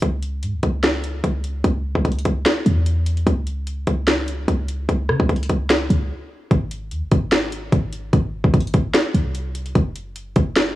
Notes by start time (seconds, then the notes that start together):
0.02 C#2, kick, closed hi-hat
0.22 closed hi-hat
0.43 G#2, closed hi-hat
0.54 C#2
0.63 C#2, kick, closed hi-hat
0.83 finger snap, snare, closed hi-hat
1.04 closed hi-hat
1.24 C#2, kick, closed hi-hat
1.44 closed hi-hat
1.64 C#2, kick, closed hi-hat
1.95 C#2, kick
2.05 C#2, kick, closed hi-hat
2.12 closed hi-hat
2.19 closed hi-hat
2.25 C#2, kick, closed hi-hat
2.46 finger snap, snare, closed hi-hat
2.66 E2, closed hi-hat
2.86 closed hi-hat
3.06 closed hi-hat, open hi-hat
3.17 closed hi-hat
3.27 C#2, kick, closed hi-hat
3.47 closed hi-hat
3.67 closed hi-hat
3.87 C#2, kick, closed hi-hat
4.08 finger snap, snare, closed hi-hat
4.28 closed hi-hat
4.48 C#2, kick, closed hi-hat
4.68 closed hi-hat
4.89 C#2, kick, closed hi-hat
5.09 C#3, cross-stick
5.20 C#2, kick
5.29 C#2, kick, closed hi-hat
5.36 closed hi-hat
5.43 closed hi-hat
5.49 C#2, kick, closed hi-hat
5.70 finger snap, snare, closed hi-hat
5.90 C#2, closed hi-hat
6.51 G#1, kick, closed hi-hat
6.71 closed hi-hat
6.91 D#2, closed hi-hat
7.02 G#1
7.12 G#1, kick, closed hi-hat
7.32 finger snap, snare, closed hi-hat
7.52 closed hi-hat
7.72 G#1, kick, closed hi-hat
7.93 closed hi-hat
8.13 G#1, kick, closed hi-hat
8.44 G#1, kick
8.53 G#1, kick, closed hi-hat
8.60 closed hi-hat
8.67 closed hi-hat
8.74 G#1, kick, closed hi-hat
8.94 finger snap, snare, closed hi-hat
9.14 C2, closed hi-hat
9.35 closed hi-hat
9.55 closed hi-hat, open hi-hat
9.66 closed hi-hat
9.75 F#1, kick, closed hi-hat
9.95 closed hi-hat
10.16 closed hi-hat
10.36 F#1, kick, closed hi-hat
10.56 finger snap, snare, closed hi-hat